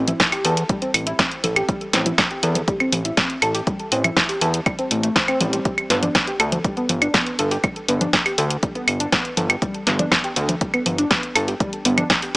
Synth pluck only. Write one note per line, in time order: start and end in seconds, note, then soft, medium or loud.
0.08 0.12 E4 medium
0.08 0.12 E5 medium
0.33 0.44 G4 medium
0.33 0.44 G5 medium
0.45 0.53 A4 medium
0.45 0.53 A5 medium
0.70 0.78 G3 medium
0.70 0.78 G4 medium
0.82 0.90 C4 medium
0.82 0.90 C5 soft
1.07 1.11 E4 medium
1.07 1.11 E5 medium
1.19 1.31 C4 medium
1.44 1.52 A4 medium
1.44 1.52 A5 medium
1.56 1.64 G4 medium
1.56 1.64 G5 medium
1.69 1.77 G3 medium
1.69 1.77 G4 medium
1.93 2.01 C4 medium
1.93 2.01 C5 medium
2.06 2.11 E4 medium
2.06 2.11 E5 medium
2.31 2.42 G4 medium
2.31 2.42 G5 medium
2.43 2.51 A4 medium
2.43 2.51 A5 medium
2.68 2.76 G3 medium
2.68 2.76 G4 medium
2.80 2.88 C4 medium
2.80 2.88 C5 medium
3.05 3.10 E4 medium
3.05 3.10 E5 medium
3.17 3.29 C4 medium
3.17 3.29 C5 medium
3.42 3.50 A4 medium
3.42 3.50 A5 medium
3.55 3.63 G4 medium
3.55 3.63 G5 medium
3.67 3.75 G3 medium
3.67 3.75 G4 medium
3.92 4.00 C4 medium
3.92 4.00 C5 medium
4.04 4.09 E4 medium
4.04 4.09 E5 medium
4.29 4.41 G4 medium
4.29 4.41 G5 medium
4.41 4.49 A4 medium
4.41 4.49 A5 medium
4.66 4.74 G3 medium
4.66 4.74 G4 medium
4.79 4.87 C4 medium
4.79 4.87 C5 medium
4.91 4.99 A3 medium
4.91 4.99 A4 medium
5.03 5.08 A3 medium
5.03 5.08 A4 medium
5.16 5.21 C5 loud
5.16 5.21 C6 medium
5.28 5.40 C4 loud
5.28 5.40 C5 medium
5.41 5.52 G3 medium
5.41 5.52 G4 medium
5.53 5.58 G3 loud
5.53 5.58 G4 medium
5.65 5.73 G3 medium
5.65 5.73 G4 medium
5.90 5.98 B3 medium
5.90 5.98 B4 medium
6.03 6.07 D4 medium
6.03 6.07 D5 medium
6.27 6.39 G4 medium
6.27 6.39 G5 medium
6.40 6.48 A4 medium
6.40 6.48 A5 medium
6.64 6.72 G3 medium
6.64 6.72 G4 medium
6.77 6.85 B3 medium
6.77 6.85 B4 medium
7.02 7.07 D4 medium
7.02 7.07 D5 medium
7.14 7.26 B3 medium
7.14 7.26 B4 medium
7.39 7.47 A4 medium
7.39 7.47 A5 medium
7.51 7.59 G4 medium
7.51 7.59 G5 medium
7.64 7.72 G3 medium
7.64 7.72 G4 medium
7.89 7.97 B3 medium
7.89 7.97 B4 medium
8.01 8.06 D4 medium
8.01 8.06 D5 medium
8.26 8.37 G4 medium
8.26 8.37 G5 medium
8.38 8.46 A4 medium
8.38 8.46 A5 medium
8.63 8.71 G3 medium
8.63 8.71 G4 medium
8.75 8.83 B3 medium
8.75 8.83 B4 medium
9.00 9.05 D4 medium
9.00 9.05 D5 medium
9.12 9.24 B3 medium
9.12 9.24 B4 medium
9.37 9.45 A4 medium
9.37 9.45 A5 medium
9.50 9.58 G4 medium
9.50 9.58 G5 medium
9.62 9.70 G3 medium
9.62 9.70 G4 medium
9.87 9.95 B3 medium
9.87 9.95 B4 medium
9.99 10.04 D4 medium
9.99 10.04 D5 medium
10.24 10.36 G4 medium
10.24 10.36 G5 medium
10.36 10.44 A4 medium
10.36 10.44 A5 medium
10.61 10.69 G3 medium
10.61 10.69 G4 medium
10.74 10.82 B3 medium
10.74 10.82 B4 medium
10.98 11.03 D4 medium
10.98 11.03 D5 medium
11.11 11.23 B3 medium
11.11 11.23 B4 medium
11.36 11.44 A4 medium
11.36 11.44 A5 medium
11.48 11.56 G4 medium
11.48 11.56 G5 medium
11.60 11.68 G3 medium
11.60 11.68 G4 medium
11.85 11.93 B3 medium
11.85 11.93 B4 medium
11.98 12.02 D4 medium
11.98 12.02 D5 medium
12.23 12.34 G4 medium
12.23 12.34 G5 medium